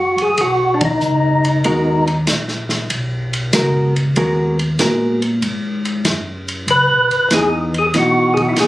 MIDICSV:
0, 0, Header, 1, 5, 480
1, 0, Start_track
1, 0, Key_signature, 5, "minor"
1, 0, Tempo, 629591
1, 1259, Time_signature, 4, 2, 24, 8
1, 6613, End_track
2, 0, Start_track
2, 0, Title_t, "Tonewheel organ"
2, 0, Program_c, 0, 16
2, 0, Note_on_c, 0, 66, 76
2, 168, Note_off_c, 0, 66, 0
2, 168, Note_on_c, 0, 68, 78
2, 311, Note_on_c, 0, 66, 81
2, 312, Note_off_c, 0, 68, 0
2, 566, Note_on_c, 0, 62, 53
2, 570, Note_off_c, 0, 66, 0
2, 634, Note_off_c, 0, 62, 0
2, 648, Note_on_c, 0, 63, 78
2, 1569, Note_off_c, 0, 63, 0
2, 5112, Note_on_c, 0, 71, 97
2, 5555, Note_off_c, 0, 71, 0
2, 5595, Note_on_c, 0, 68, 76
2, 5740, Note_off_c, 0, 68, 0
2, 5935, Note_on_c, 0, 68, 85
2, 5997, Note_off_c, 0, 68, 0
2, 6084, Note_on_c, 0, 66, 79
2, 6357, Note_on_c, 0, 68, 70
2, 6359, Note_off_c, 0, 66, 0
2, 6419, Note_off_c, 0, 68, 0
2, 6423, Note_on_c, 0, 66, 67
2, 6460, Note_off_c, 0, 66, 0
2, 6472, Note_on_c, 0, 64, 63
2, 6505, Note_off_c, 0, 64, 0
2, 6508, Note_on_c, 0, 66, 68
2, 6545, Note_off_c, 0, 66, 0
2, 6557, Note_on_c, 0, 68, 76
2, 6613, Note_off_c, 0, 68, 0
2, 6613, End_track
3, 0, Start_track
3, 0, Title_t, "Hollow-body jazz guitar"
3, 0, Program_c, 1, 26
3, 1259, Note_on_c, 1, 56, 49
3, 1263, Note_on_c, 1, 59, 49
3, 1266, Note_on_c, 1, 66, 53
3, 1268, Note_on_c, 1, 70, 48
3, 1556, Note_off_c, 1, 56, 0
3, 1558, Note_off_c, 1, 59, 0
3, 1560, Note_off_c, 1, 66, 0
3, 1561, Note_off_c, 1, 70, 0
3, 2693, Note_on_c, 1, 56, 44
3, 2701, Note_on_c, 1, 59, 45
3, 2701, Note_on_c, 1, 66, 48
3, 2706, Note_on_c, 1, 70, 52
3, 2994, Note_off_c, 1, 56, 0
3, 2998, Note_off_c, 1, 59, 0
3, 2998, Note_off_c, 1, 66, 0
3, 3000, Note_off_c, 1, 70, 0
3, 3177, Note_on_c, 1, 56, 45
3, 3181, Note_on_c, 1, 59, 53
3, 3182, Note_on_c, 1, 66, 58
3, 3184, Note_on_c, 1, 70, 58
3, 3476, Note_off_c, 1, 56, 0
3, 3478, Note_off_c, 1, 59, 0
3, 3478, Note_off_c, 1, 66, 0
3, 3479, Note_off_c, 1, 70, 0
3, 3657, Note_on_c, 1, 56, 47
3, 3660, Note_on_c, 1, 59, 50
3, 3663, Note_on_c, 1, 66, 54
3, 3667, Note_on_c, 1, 70, 49
3, 3956, Note_off_c, 1, 56, 0
3, 3957, Note_off_c, 1, 59, 0
3, 3959, Note_off_c, 1, 66, 0
3, 3961, Note_off_c, 1, 70, 0
3, 5583, Note_on_c, 1, 52, 45
3, 5586, Note_on_c, 1, 59, 50
3, 5593, Note_on_c, 1, 63, 50
3, 5879, Note_off_c, 1, 52, 0
3, 5880, Note_off_c, 1, 59, 0
3, 5884, Note_off_c, 1, 63, 0
3, 6058, Note_on_c, 1, 52, 49
3, 6065, Note_on_c, 1, 59, 46
3, 6069, Note_on_c, 1, 63, 54
3, 6613, Note_off_c, 1, 52, 0
3, 6613, Note_off_c, 1, 59, 0
3, 6613, Note_off_c, 1, 63, 0
3, 6613, End_track
4, 0, Start_track
4, 0, Title_t, "Tonewheel organ"
4, 0, Program_c, 2, 16
4, 0, Note_on_c, 2, 42, 80
4, 121, Note_off_c, 2, 42, 0
4, 150, Note_on_c, 2, 42, 33
4, 224, Note_off_c, 2, 42, 0
4, 290, Note_on_c, 2, 35, 76
4, 760, Note_off_c, 2, 35, 0
4, 775, Note_on_c, 2, 37, 84
4, 1242, Note_off_c, 2, 37, 0
4, 1253, Note_on_c, 2, 39, 71
4, 1722, Note_off_c, 2, 39, 0
4, 1731, Note_on_c, 2, 34, 87
4, 2201, Note_off_c, 2, 34, 0
4, 2211, Note_on_c, 2, 35, 75
4, 2681, Note_off_c, 2, 35, 0
4, 2694, Note_on_c, 2, 37, 90
4, 3162, Note_off_c, 2, 37, 0
4, 3173, Note_on_c, 2, 39, 76
4, 3642, Note_off_c, 2, 39, 0
4, 3653, Note_on_c, 2, 46, 74
4, 4122, Note_off_c, 2, 46, 0
4, 4136, Note_on_c, 2, 44, 69
4, 4603, Note_off_c, 2, 44, 0
4, 4610, Note_on_c, 2, 42, 82
4, 5080, Note_off_c, 2, 42, 0
4, 5091, Note_on_c, 2, 37, 78
4, 5250, Note_off_c, 2, 37, 0
4, 5257, Note_on_c, 2, 35, 53
4, 5415, Note_on_c, 2, 32, 66
4, 5418, Note_off_c, 2, 35, 0
4, 5566, Note_off_c, 2, 32, 0
4, 5574, Note_on_c, 2, 40, 80
4, 6042, Note_off_c, 2, 40, 0
4, 6053, Note_on_c, 2, 47, 72
4, 6522, Note_off_c, 2, 47, 0
4, 6532, Note_on_c, 2, 46, 90
4, 6613, Note_off_c, 2, 46, 0
4, 6613, End_track
5, 0, Start_track
5, 0, Title_t, "Drums"
5, 138, Note_on_c, 9, 51, 41
5, 214, Note_off_c, 9, 51, 0
5, 286, Note_on_c, 9, 51, 52
5, 289, Note_on_c, 9, 36, 21
5, 362, Note_off_c, 9, 51, 0
5, 366, Note_off_c, 9, 36, 0
5, 616, Note_on_c, 9, 51, 66
5, 621, Note_on_c, 9, 36, 76
5, 692, Note_off_c, 9, 51, 0
5, 697, Note_off_c, 9, 36, 0
5, 769, Note_on_c, 9, 44, 53
5, 845, Note_off_c, 9, 44, 0
5, 1102, Note_on_c, 9, 51, 41
5, 1178, Note_off_c, 9, 51, 0
5, 1252, Note_on_c, 9, 51, 55
5, 1253, Note_on_c, 9, 36, 20
5, 1328, Note_off_c, 9, 51, 0
5, 1330, Note_off_c, 9, 36, 0
5, 1581, Note_on_c, 9, 51, 40
5, 1657, Note_off_c, 9, 51, 0
5, 1730, Note_on_c, 9, 44, 56
5, 1730, Note_on_c, 9, 51, 55
5, 1733, Note_on_c, 9, 38, 59
5, 1734, Note_on_c, 9, 36, 18
5, 1807, Note_off_c, 9, 44, 0
5, 1807, Note_off_c, 9, 51, 0
5, 1810, Note_off_c, 9, 36, 0
5, 1810, Note_off_c, 9, 38, 0
5, 1892, Note_on_c, 9, 38, 28
5, 1968, Note_off_c, 9, 38, 0
5, 2052, Note_on_c, 9, 38, 41
5, 2064, Note_on_c, 9, 51, 41
5, 2128, Note_off_c, 9, 38, 0
5, 2140, Note_off_c, 9, 51, 0
5, 2211, Note_on_c, 9, 51, 50
5, 2214, Note_on_c, 9, 36, 20
5, 2287, Note_off_c, 9, 51, 0
5, 2290, Note_off_c, 9, 36, 0
5, 2541, Note_on_c, 9, 51, 39
5, 2617, Note_off_c, 9, 51, 0
5, 2691, Note_on_c, 9, 44, 54
5, 2691, Note_on_c, 9, 51, 62
5, 2694, Note_on_c, 9, 36, 16
5, 2694, Note_on_c, 9, 38, 56
5, 2767, Note_off_c, 9, 44, 0
5, 2767, Note_off_c, 9, 51, 0
5, 2770, Note_off_c, 9, 36, 0
5, 2770, Note_off_c, 9, 38, 0
5, 3021, Note_on_c, 9, 51, 41
5, 3097, Note_off_c, 9, 51, 0
5, 3171, Note_on_c, 9, 51, 59
5, 3174, Note_on_c, 9, 36, 21
5, 3247, Note_off_c, 9, 51, 0
5, 3250, Note_off_c, 9, 36, 0
5, 3501, Note_on_c, 9, 51, 42
5, 3577, Note_off_c, 9, 51, 0
5, 3651, Note_on_c, 9, 44, 53
5, 3651, Note_on_c, 9, 51, 64
5, 3654, Note_on_c, 9, 36, 17
5, 3654, Note_on_c, 9, 38, 63
5, 3727, Note_off_c, 9, 44, 0
5, 3727, Note_off_c, 9, 51, 0
5, 3730, Note_off_c, 9, 36, 0
5, 3730, Note_off_c, 9, 38, 0
5, 3980, Note_on_c, 9, 51, 39
5, 4056, Note_off_c, 9, 51, 0
5, 4134, Note_on_c, 9, 36, 21
5, 4134, Note_on_c, 9, 51, 53
5, 4210, Note_off_c, 9, 36, 0
5, 4210, Note_off_c, 9, 51, 0
5, 4462, Note_on_c, 9, 51, 38
5, 4538, Note_off_c, 9, 51, 0
5, 4611, Note_on_c, 9, 44, 39
5, 4611, Note_on_c, 9, 51, 55
5, 4613, Note_on_c, 9, 36, 14
5, 4614, Note_on_c, 9, 38, 57
5, 4687, Note_off_c, 9, 44, 0
5, 4687, Note_off_c, 9, 51, 0
5, 4689, Note_off_c, 9, 36, 0
5, 4690, Note_off_c, 9, 38, 0
5, 4943, Note_on_c, 9, 51, 39
5, 5020, Note_off_c, 9, 51, 0
5, 5092, Note_on_c, 9, 51, 53
5, 5093, Note_on_c, 9, 36, 18
5, 5168, Note_off_c, 9, 51, 0
5, 5170, Note_off_c, 9, 36, 0
5, 5421, Note_on_c, 9, 51, 38
5, 5497, Note_off_c, 9, 51, 0
5, 5570, Note_on_c, 9, 44, 55
5, 5570, Note_on_c, 9, 51, 58
5, 5573, Note_on_c, 9, 36, 16
5, 5573, Note_on_c, 9, 38, 59
5, 5646, Note_off_c, 9, 44, 0
5, 5646, Note_off_c, 9, 51, 0
5, 5649, Note_off_c, 9, 36, 0
5, 5649, Note_off_c, 9, 38, 0
5, 5903, Note_on_c, 9, 51, 37
5, 5979, Note_off_c, 9, 51, 0
5, 6051, Note_on_c, 9, 51, 62
5, 6053, Note_on_c, 9, 36, 17
5, 6054, Note_on_c, 9, 38, 35
5, 6128, Note_off_c, 9, 51, 0
5, 6130, Note_off_c, 9, 36, 0
5, 6131, Note_off_c, 9, 38, 0
5, 6382, Note_on_c, 9, 51, 41
5, 6383, Note_on_c, 9, 36, 48
5, 6458, Note_off_c, 9, 51, 0
5, 6460, Note_off_c, 9, 36, 0
5, 6529, Note_on_c, 9, 44, 48
5, 6529, Note_on_c, 9, 51, 56
5, 6532, Note_on_c, 9, 38, 57
5, 6533, Note_on_c, 9, 36, 22
5, 6605, Note_off_c, 9, 44, 0
5, 6605, Note_off_c, 9, 51, 0
5, 6608, Note_off_c, 9, 38, 0
5, 6609, Note_off_c, 9, 36, 0
5, 6613, End_track
0, 0, End_of_file